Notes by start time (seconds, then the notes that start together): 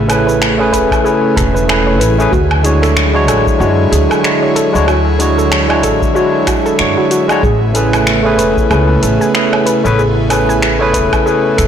Already playing: A1 C#3 A3 C#4 E4 G#4
0.08 A3 C#4 E4 G#4 A4 B4, closed hi-hat, cabasa, low woodblock
0.27 B4, cabasa
0.42 finger snap, cabasa
0.58 A3 C#4 E4 G#4 B4 C#5
0.72 E1 B4, kick, closed hi-hat, cabasa
0.91 kick, cabasa, low woodblock
1.03 A3 C#4 E4 G#4 B4, cabasa
1.36 E1 A4, finger snap, kick, closed hi-hat, cabasa
1.54 B4, cabasa
1.67 A3 C#4 E4 G#4 B4, finger snap, cabasa, low woodblock
1.87 C#5
2.00 A1 B4, closed hi-hat, cabasa
2.18 A3 C#4 E4 G#4 B4, cabasa
2.32 D2 D3 F#3 F#4 C#5, kick, cabasa
2.51 low woodblock
2.63 G#3 D4 E4 F#4 G#4 C#5, closed hi-hat, cabasa
2.82 A4, finger snap, cabasa
2.97 finger snap, cabasa
3.13 G#3 D4 E4 F#4 C#5
3.28 A1 A4, closed hi-hat, cabasa, low woodblock
3.47 kick, cabasa
3.58 F#2 G#3 D4 E4 F#4 C#5, cabasa
3.92 D2 G#4, closed hi-hat, cabasa
4.10 A4, cabasa, low woodblock
4.22 G#3 D4 E4 F#4 C#5, finger snap, cabasa
4.43 C#5
4.56 A4, closed hi-hat, cabasa
4.73 D2 G#3 D4 E4 F#4 C#5, cabasa
4.87 F#4, cabasa, low woodblock
5.19 G#3 D4 E4 F#4 G#4 C#5, closed hi-hat, cabasa
5.38 A4, cabasa
5.52 finger snap, cabasa
5.68 G#3 D4 E4 F#4 C#5, low woodblock
5.83 A1 A4, kick, closed hi-hat, cabasa
6.02 kick, cabasa
6.13 G#3 D4 E4 F#4 C#5, cabasa
6.47 F#4, finger snap, kick, closed hi-hat, cabasa, low woodblock
6.66 A4, cabasa
6.78 F#2 G#3 D4 E4 F#4 C#5, finger snap, cabasa
6.97 F#4
7.11 F#4, closed hi-hat, cabasa
7.28 G#3 D4 E4 F#4 C#5, cabasa, low woodblock
7.43 A1 C#3 A3 B3 G#4, kick, cabasa
7.73 A3 C#4 E4 G#4 A4 B4, closed hi-hat, cabasa
7.93 G#5, finger snap, cabasa, low woodblock
8.07 finger snap, cabasa
8.23 A3 C#4 E4 G#4 B4 C#5
8.38 E1 B4, closed hi-hat, cabasa
8.57 kick, cabasa
8.69 C#2 A3 C#4 E4 G#4 B4, cabasa, low woodblock
9.03 A1 A4, closed hi-hat, cabasa
9.21 G#5, cabasa
9.34 A3 C#4 E4 G#4 B4, finger snap, cabasa
9.53 C#5, low woodblock
9.66 B4, closed hi-hat, cabasa
9.83 A1 A3 C#4 E4 G#4 B4, cabasa
9.99 G#4, cabasa
10.29 A3 C#4 E4 G#4 A4 B4, closed hi-hat, cabasa, low woodblock
10.49 G#5, cabasa
10.62 finger snap, cabasa
10.79 A3 C#4 E4 G#4 B4 C#5
10.94 E1 B4, kick, closed hi-hat, cabasa
11.13 kick, cabasa, low woodblock
11.25 A3 C#4 E4 G#4 B4, cabasa
11.57 E1 A4, finger snap, kick, closed hi-hat, cabasa